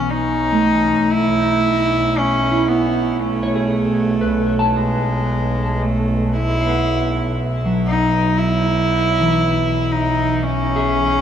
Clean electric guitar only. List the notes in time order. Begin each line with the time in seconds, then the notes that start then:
Already playing: E3
0.52 A3
2.51 E4
3.43 C#5
3.56 G#4
4.21 B4
4.59 A5
6.67 B3
7.65 F#3
9.21 E3
10.76 G#4 E5